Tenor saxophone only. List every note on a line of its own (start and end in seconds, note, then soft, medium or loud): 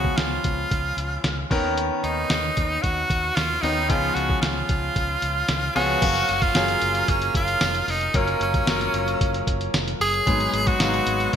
0.00 0.18 F#4 medium
0.17 1.50 F4 medium
2.04 2.84 D#4 loud
2.82 3.37 F#4 loud
3.36 3.63 F4 loud
3.62 3.91 D#4 medium
3.89 4.16 F4 loud
4.15 4.41 F#4 loud
4.42 5.71 F4 medium
5.76 6.44 F#4 loud
6.42 7.11 F4 loud
7.09 7.35 C#4 medium
7.36 7.92 F4 loud
7.90 8.18 D#4 medium
8.17 8.42 C#4 medium
8.43 9.44 C#4 medium
10.01 10.69 G#4 loud
10.68 11.36 F#4 loud